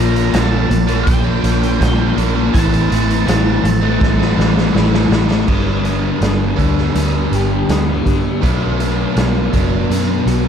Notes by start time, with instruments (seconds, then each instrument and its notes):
Already playing: fingered electric bass A#1, overdriven electric guitar A#2 D3 F3 A#3 D4, distorted electric guitar A#2, clean electric guitar F3, lead electric guitar A#5
0.16 closed hi-hat
0.32 fingered electric bass A#1, overdriven electric guitar A#2 D3 F3 A#3 D4, clean electric guitar F3, lead electric guitar A#5, snare, closed hi-hat
0.43 lead electric guitar A5
0.69 fingered electric bass A#1, muted overdriven electric guitar stroke, muted distorted electric guitar stroke, closed hi-hat
0.87 overdriven electric guitar F3 A#3 D4, closed hi-hat
1.03 fingered electric bass A#1, clean electric guitar F3, lead electric guitar G5, kick, closed hi-hat
1.24 overdriven electric guitar F3 A#3 D4
1.41 fingered electric bass A#1, distorted electric guitar A#2, overdriven electric guitar D3 F3 A#3 D4, clean electric guitar F3, closed hi-hat
1.63 closed hi-hat
1.79 fingered electric bass A#1, overdriven electric guitar A#2 D3 F3 A#3 D4, clean electric guitar F3, kick, closed hi-hat
1.83 snare
1.97 overdriven electric guitar F3 A#3 D4
2.16 fingered electric bass A#1, distorted electric guitar A#2, overdriven electric guitar D3 F3 A#3 D4, closed hi-hat
2.33 overdriven electric guitar F3 A#3 D4
2.52 fingered electric bass A1, overdriven electric guitar A2 E3 A3 C4 E4, clean electric guitar E3, lead electric guitar A5, kick, closed hi-hat
2.71 distorted electric guitar E3, overdriven electric guitar A3 C4 E4, closed hi-hat
2.89 fingered electric bass A1, distorted electric guitar A2, overdriven electric guitar E3 A3 C4 E4, clean electric guitar E3, closed hi-hat
3.10 closed hi-hat
3.26 fingered electric bass A1, overdriven electric guitar A2 E3 A3 C4 E4, clean electric guitar E3, snare, closed hi-hat
3.63 fingered electric bass A1, clean electric guitar A3, muted overdriven electric guitar stroke, muted distorted electric guitar stroke, closed hi-hat
3.81 distorted electric guitar E3, overdriven electric guitar A3 C4 E4
4.01 fingered electric bass A1, clean electric guitar E3, kick, snare
4.19 distorted electric guitar E3, overdriven electric guitar A3 C4 E4, snare
4.36 fingered electric bass A1, distorted electric guitar A2, overdriven electric guitar E3 A3 C4 E4, clean electric guitar E3, snare
4.58 snare
4.73 fingered electric bass A1, overdriven electric guitar A2 E3 A3 C4 E4, clean electric guitar E3, snare
4.91 overdriven electric guitar A3 C4 E4, snare
4.96 distorted electric guitar E3
5.09 fingered electric bass A1, distorted electric guitar A2, overdriven electric guitar E3 A3 C4 E4, clean electric guitar A3, snare
5.29 distorted electric guitar E3, overdriven electric guitar A3 C4 E4, snare
5.47 fingered electric bass G1, overdriven electric guitar G2 D3 G3 B3 D4, clean electric guitar B3, kick, crash
5.85 clean electric guitar B3, closed hi-hat
6.21 fingered electric bass G1, clean electric guitar B3, snare, closed hi-hat
6.56 fingered electric bass D2, overdriven electric guitar G2 D3 G3 B3 D4, kick, closed hi-hat
6.60 clean electric guitar D4
6.78 snare
6.95 fingered electric bass D2, distorted electric guitar G2 D3 G3, clean electric guitar B3, closed hi-hat
7.31 fingered electric bass G1, clean electric guitar G4, closed hi-hat
7.69 fingered electric bass D2, clean electric guitar B3, snare, closed hi-hat
8.06 fingered electric bass G2, clean electric guitar D4, kick, closed hi-hat
8.41 fingered electric bass B1, overdriven electric guitar B2 F#3 B3 D4, clean electric guitar A3, kick, closed hi-hat
8.80 clean electric guitar A3, closed hi-hat
9.16 fingered electric bass B1, clean electric guitar A3, snare, closed hi-hat
9.53 fingered electric bass F#1, overdriven electric guitar B2 F#3 B3 D4, clean electric guitar D4, kick, closed hi-hat
9.89 fingered electric bass F#2, distorted electric guitar B2 F#3 B3, clean electric guitar A3, closed hi-hat
10.26 fingered electric bass B1, clean electric guitar F#4, closed hi-hat